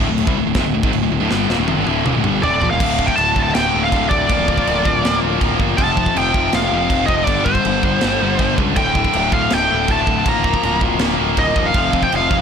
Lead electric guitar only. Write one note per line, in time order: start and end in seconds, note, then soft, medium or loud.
2.43 2.69 D5 loud
2.70 3.09 F5 medium
3.06 3.16 G5 medium
3.16 3.41 A5 loud
3.43 3.54 A5 loud
3.54 3.83 G5 loud
3.84 4.09 F5 loud
4.09 5.18 D5 medium
5.78 6.16 A5 loud
6.18 6.55 G5 medium
6.55 7.06 F5 medium
7.06 7.24 D#5 medium
7.24 7.45 D5 loud
7.45 8.53 C5 medium
8.77 9.33 G5 loud
9.33 9.53 F5 loud
9.53 9.91 G5 loud
9.92 10.29 A5 loud
10.29 10.79 A#5 loud
11.39 11.67 D#5 loud
11.66 12.03 F5 loud
12.03 12.12 G5 loud
12.16 12.41 F5 loud